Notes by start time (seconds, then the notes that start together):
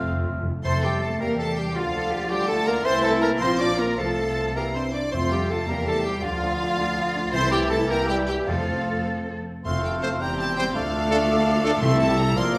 Already playing: F1 F2 A3 C4 F4 C5 F6
0.03 F2
0.11 F2
0.19 F2
0.27 F2
0.34 F2
0.42 F2
0.50 F2
0.64 F2 A3 C4 A4 C5 C6 C7
0.83 G3 G4 G5
1.01 A3 A4 A5
1.20 E2 G3 A#3 G4 A#4 A#5
1.38 A3 A4 A5
1.56 G3 G4 G5
1.75 D2 D3 F3 A3 D4 F4 F5 A6
1.95 A4
2.13 G4
2.30 G3 F4 G4 G5
2.48 A3 A4 A5
2.66 A#3 A#4 A#5
2.85 C2 E3 A3 C4 E4 C5 C6 A6
3.01 A3 A4 A5
3.21 A#3 A#4 A#5
3.40 A#1 F3 C4 F4 C5 C6 A#6
3.58 D4 D5 D6
3.77 A#3 A#4 A#5
3.98 C2 F3 A3 F4 A4 A5 C7
4.55 E3 G3 A#3 E4 G4 A#4 A#5 C7
4.74 C4 D4 C5 C6
4.93 D4 E4 D5 D6
5.12 F2 A3 C4 F4 C5 C6 C7
5.31 G3 A3 C4 G4 G5
5.50 A3 C4 A4 A5
5.68 E2 G3 A#3 C4 G4 A#4 A#5
5.87 G3 A3 C4 A4 A5
6.05 G3 C4 G4 G5
6.23 D2 D3 F3 A3 D4 F4 F5 A6
6.42 A3 D4
6.60 A3 D4
6.78 D2 A3 D4
6.96 A3 D4
7.15 A3 D4
7.32 C2 C3 E3 A3 C4 E4 C5 C6
7.51 G3 G4 G5
7.70 A3 A4 A5
7.87 C2 G3 A#3 E4 G4 A#4 A#5 G6
8.06 G3 G4 G5
8.27 G3 G4 G5
8.46 F2 F3 A3 C4 F4 A4 F5 A6
9.64 F1 F2 A3 C4 F4 A4 C5 F5 C6 F6
9.85 G5
10.02 A3 C4 C5 A5
10.20 E1 E2 G3 C4 E4 G4 C5 G5 A#5 G6
10.40 A5
10.56 G3 C4 C5 G5
10.74 D2 A3 D4 F4 A4 D5 F5 D6
11.11 A3 D4 A4
11.64 A3 D4 A4
11.81 C2 C3 A3 C4 E4 A4 E5 C6 E6
11.99 A5
12.09 G3
12.17 A#5
12.36 A#1 A#2 F3 A#3 F4 A#4 D5 C6 F6